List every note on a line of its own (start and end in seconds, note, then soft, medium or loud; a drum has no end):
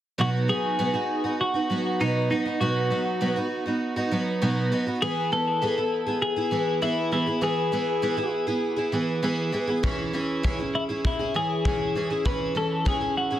0.18 0.49 B2 medium
0.18 0.47 F#3 medium
0.18 0.48 B3 medium
0.18 0.48 D#4 medium
0.18 0.48 F#4 medium
0.48 0.78 F#3 soft
0.48 0.78 B3 medium
0.48 0.78 D#4 medium
0.48 0.79 F#4 medium
0.48 1.36 G#4 medium
0.79 0.94 B2 medium
0.79 0.94 F#3 medium
0.79 0.94 B3 medium
0.79 0.93 D#4 medium
0.79 0.92 F#4 medium
0.94 1.25 B3 soft
0.94 1.24 D#4 soft
0.94 1.23 F#4 soft
1.24 1.55 B3 soft
1.24 1.54 D#4 soft
1.24 1.53 F#4 soft
1.41 2.02 F#4 medium
1.54 1.69 B3 soft
1.54 1.70 D#4 soft
1.54 1.69 F#4 soft
1.70 1.99 F#3 medium
1.70 2.00 B3 medium
1.70 2.00 D#4 medium
1.70 2.00 F#4 medium
2.00 2.30 B2 medium
2.00 2.29 F#3 medium
2.00 2.30 B3 medium
2.00 2.31 D#4 medium
2.00 2.31 F#4 medium
2.30 2.45 F#3 soft
2.30 2.46 B3 medium
2.30 2.46 D#4 medium
2.30 2.44 F#4 medium
2.46 2.60 B3 soft
2.46 2.60 D#4 soft
2.46 2.60 F#4 soft
2.61 2.91 B2 medium
2.61 2.89 F#3 medium
2.61 2.90 B3 medium
2.61 2.90 D#4 medium
2.61 2.91 F#4 medium
2.90 3.20 F#3 soft
2.90 3.20 B3 medium
2.90 3.21 D#4 medium
2.90 3.21 F#4 medium
3.21 3.36 B2 medium
3.21 3.36 F#3 medium
3.21 3.36 B3 medium
3.21 3.36 D#4 medium
3.21 3.35 F#4 medium
3.36 3.67 B3 soft
3.36 3.66 D#4 soft
3.36 3.64 F#4 medium
3.66 3.97 B3 soft
3.66 3.96 D#4 soft
3.66 3.95 F#4 soft
3.96 4.11 B3 soft
3.96 4.12 D#4 medium
3.96 4.11 F#4 medium
4.11 4.41 F#3 medium
4.11 4.41 B3 medium
4.11 4.42 D#4 medium
4.11 4.42 F#4 medium
4.42 4.71 B2 medium
4.42 4.70 F#3 medium
4.42 4.71 B3 medium
4.42 4.71 D#4 medium
4.42 4.72 F#4 medium
4.72 4.86 F#3 medium
4.72 4.87 B3 medium
4.72 4.86 D#4 medium
4.72 4.85 F#4 medium
4.87 5.01 B3 soft
4.87 5.02 D#4 soft
4.87 5.01 F#4 soft
5.02 5.31 E3 medium
5.02 5.31 B3 medium
5.02 5.32 E4 medium
5.02 5.32 G#4 medium
5.32 5.60 E3 soft
5.32 5.61 B3 medium
5.32 5.61 E4 soft
5.32 6.19 A4 loud
5.62 5.77 E3 medium
5.62 5.77 B3 medium
5.62 5.76 E4 medium
5.62 5.77 G#4 medium
5.78 6.07 B3 soft
5.78 6.07 E4 soft
6.07 6.37 B3 soft
6.07 6.36 E4 soft
6.07 6.35 G#4 soft
6.22 6.82 G#4 medium
6.36 6.51 B3 soft
6.36 6.51 E4 soft
6.36 6.52 G#4 soft
6.51 6.80 E3 medium
6.51 6.81 B3 soft
6.51 6.82 E4 medium
6.51 6.82 G#4 medium
6.82 7.10 E3 medium
6.82 7.11 B3 medium
6.82 7.12 E4 medium
6.82 7.12 G#4 medium
7.12 7.27 E3 soft
7.12 7.27 B3 medium
7.12 7.26 E4 soft
7.12 7.25 G#4 medium
7.26 7.40 B3 soft
7.26 7.41 E4 soft
7.26 7.41 G#4 soft
7.41 7.71 E3 medium
7.41 7.71 B3 medium
7.41 7.72 E4 medium
7.41 7.73 G#4 medium
7.72 8.01 E3 soft
7.72 8.02 B3 medium
7.72 8.02 E4 medium
7.72 8.02 G#4 medium
8.02 8.18 E3 medium
8.02 8.17 B3 medium
8.02 8.16 E4 medium
8.02 8.15 G#4 medium
8.17 8.48 B3 soft
8.17 8.47 E4 soft
8.17 8.46 G#4 medium
8.47 8.78 B3 soft
8.47 8.77 E4 soft
8.47 8.75 G#4 medium
8.76 8.92 B3 soft
8.76 8.92 E4 soft
8.76 8.93 G#4 medium
8.92 9.21 E3 medium
8.92 9.22 B3 medium
8.92 9.22 E4 medium
8.92 9.23 G#4 medium
9.23 9.51 E3 medium
9.23 9.52 B3 medium
9.23 9.52 E4 medium
9.23 9.53 G#4 medium
9.52 9.68 E3 medium
9.52 9.68 B3 medium
9.52 9.67 E4 medium
9.52 9.66 G#4 medium
9.67 9.83 B3 soft
9.67 9.83 E4 soft
9.67 9.83 G#4 soft
9.83 10.12 E3 medium
9.83 10.12 C#4 medium
9.83 10.13 E4 medium
9.83 10.14 G#4 medium
9.83 kick medium
10.13 10.42 E3 medium
10.13 10.43 C#4 medium
10.13 10.43 E4 medium
10.13 10.43 G#4 medium
10.43 10.59 E3 medium
10.43 10.59 C#4 medium
10.43 10.58 E4 medium
10.43 10.57 G#4 medium
10.43 kick medium
10.58 10.90 C#4 soft
10.58 10.89 E4 soft
10.58 10.88 G#4 soft
10.75 10.83 E4 medium
10.89 11.20 C#4 soft
10.89 11.19 E4 soft
10.89 11.18 G#4 soft
11.05 11.36 E4 medium
11.05 kick medium
11.19 11.34 C#4 soft
11.19 11.35 E4 soft
11.19 11.35 G#4 soft
11.34 11.64 E3 medium
11.34 11.65 C#4 medium
11.34 11.65 E4 soft
11.34 11.65 G#4 medium
11.65 11.94 E3 medium
11.65 11.95 C#4 medium
11.65 11.96 E4 medium
11.65 11.96 G#4 medium
11.65 kick medium
11.95 12.11 E3 soft
11.95 12.11 C#4 medium
11.95 12.10 E4 medium
11.95 12.09 G#4 medium
12.10 12.24 C#4 soft
12.10 12.25 E4 soft
12.10 12.25 G#4 soft
12.25 12.54 E3 medium
12.25 12.54 C#4 medium
12.25 12.55 E4 medium
12.25 12.56 G#4 medium
12.25 12.57 B4 medium
12.25 kick medium
12.55 12.84 E3 medium
12.55 12.84 C#4 medium
12.55 12.85 E4 medium
12.55 12.85 A4 medium
12.85 13.01 E3 medium
12.85 13.01 C#4 medium
12.85 13.01 E4 medium
12.85 13.00 G#4 medium
12.85 kick medium
13.01 13.31 C#4 soft
13.01 13.30 E4 soft
13.01 13.29 G#4 soft
13.17 13.40 F#4 medium
13.31 13.40 C#4 soft
13.31 13.40 E4 soft
13.31 13.40 G#4 soft